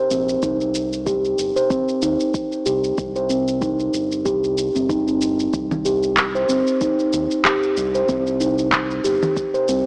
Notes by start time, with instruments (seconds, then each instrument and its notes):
0.11 analog synth bass A#1, steel tongue drum C4, shaker
0.29 shaker
0.43 analog synth bass C2, steel tongue drum D#4, kick, shaker
0.61 shaker
0.75 shaker
0.93 shaker
1.06 steel tongue drum G4, kick, shaker
1.25 shaker
1.38 analog synth bass G1, shaker
1.56 steel tongue drum C5, shaker
1.70 steel tongue drum C4, kick, shaker
1.88 shaker
2.02 analog synth bass D#2, steel tongue drum D#4, shaker
2.20 shaker
2.34 kick, shaker
2.52 shaker
2.66 analog synth bass C2, steel tongue drum G4, shaker
2.84 shaker
2.98 analog synth bass C2, kick, shaker
3.16 steel tongue drum C5, shaker
3.30 steel tongue drum C4, shaker
3.48 shaker
3.61 steel tongue drum D#4, kick, shaker
3.80 shaker
3.94 analog synth bass G1, shaker
4.12 shaker
4.25 analog synth bass C2, steel tongue drum G4, kick, shaker
4.44 shaker
4.58 shaker
4.75 analog synth bass G1, steel tongue drum C4, shaker
4.89 steel tongue drum D#4, kick, shaker
5.07 steel tongue drum C4, shaker
5.21 steel tongue drum D#4, shaker
5.40 shaker
5.54 analog synth bass C2, kick, shaker
5.71 low conga, shaker
5.85 steel tongue drum G4, shaker
6.03 shaker
6.17 kick, clap, shaker
6.35 steel tongue drum C5, shaker
6.49 analog synth bass G1, steel tongue drum C4, shaker
6.67 shaker
6.81 steel tongue drum D#4, kick, shaker
6.99 shaker
7.13 analog synth bass D#2, shaker
7.31 shaker
7.45 steel tongue drum G4, kick, clap, shaker
7.63 shaker
7.77 analog synth bass C2, shaker
7.95 steel tongue drum C5, shaker
8.08 analog synth bass C2, steel tongue drum C4, kick, shaker
8.27 shaker
8.40 steel tongue drum D#4, shaker
8.59 shaker
8.72 kick, clap, shaker
8.91 shaker
9.04 analog synth bass G1, steel tongue drum G4, shaker
9.23 low conga, shaker
9.37 kick, shaker
9.54 steel tongue drum C5, shaker
9.68 analog synth bass C2, steel tongue drum C4, shaker